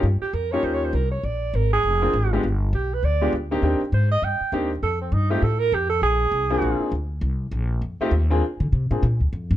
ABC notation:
X:1
M:4/4
L:1/8
Q:"Swing" 1/4=201
K:Bbmix
V:1 name="Alto saxophone"
z G B _d (3c d c B d | d2 B A4- A | z2 G =B d2 z2 | z2 c e g2 z2 |
=A C E G A B G A | A6 z2 | z8 | z8 |]
V:2 name="Upright piano"
z3 [B,_DEFG]3 z2 | z4 z [B,CDFA] z [A,_CDFG] | z4 z [A,=B,DFG] z [_B,CDEG] | [B,CDEG] z4 z [B,CDEG] z |
z3 [=A,CEFG] z4 | z3 [B,CDFA]3 z2 | z4 z [=A,CEFG] z [B,CDF_A] | z3 [B,CDFA] z4 |]
V:3 name="Upright bass" clef=bass
G,, z F,,2 E,,2 C,,2 | B,,,2 A,,,2 F,,,2 A,,,2 | G,,,2 =B,,,2 D,,2 D,,2 | E,, z A,,2 G,, z E,,2 |
F,,2 G,,2 =A,,2 F,,2 | B,,,2 C,,2 B,,, z D,,2 | C,,2 B,,,2 F,, z E,,2 | z D, C, =A,, B,, D,, F,, G,, |]